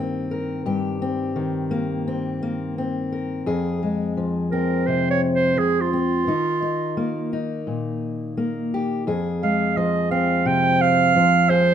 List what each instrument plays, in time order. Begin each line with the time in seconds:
Already playing: steel-string acoustic guitar G2 D#3 A#3 C4 G4
0.31 steel-string acoustic guitar A#4
0.66 steel-string acoustic guitar G2 G4
1.02 steel-string acoustic guitar C4
1.36 steel-string acoustic guitar D#3
1.71 steel-string acoustic guitar A#3
2.08 steel-string acoustic guitar C4
2.43 steel-string acoustic guitar A#3
2.78 steel-string acoustic guitar C4
3.12 steel-string acoustic guitar A#4
3.46 steel-string acoustic guitar F2 G#4
3.83 steel-string acoustic guitar G#3
4.17 steel-string acoustic guitar F3
4.51 steel-string acoustic guitar C4, clarinet A#4
4.87 steel-string acoustic guitar C3, clarinet C5
5.11 clarinet C#5
5.35 clarinet C5
5.57 steel-string acoustic guitar F3, clarinet G#4
5.81 clarinet F4
5.93 steel-string acoustic guitar C4
6.27 steel-string acoustic guitar D#3 D#4
6.62 steel-string acoustic guitar D#4
6.97 steel-string acoustic guitar A#3
7.33 steel-string acoustic guitar D#4
7.67 steel-string acoustic guitar A#2
8.37 steel-string acoustic guitar A#3
8.74 steel-string acoustic guitar G4
9.07 steel-string acoustic guitar F2 G#4
9.43 steel-string acoustic guitar G#3, clarinet F5
9.77 steel-string acoustic guitar F3, clarinet D#5
10.11 steel-string acoustic guitar C4, clarinet F5
10.46 steel-string acoustic guitar C3, clarinet G5
10.81 clarinet F5
11.16 steel-string acoustic guitar F3
11.49 steel-string acoustic guitar G#4, clarinet C5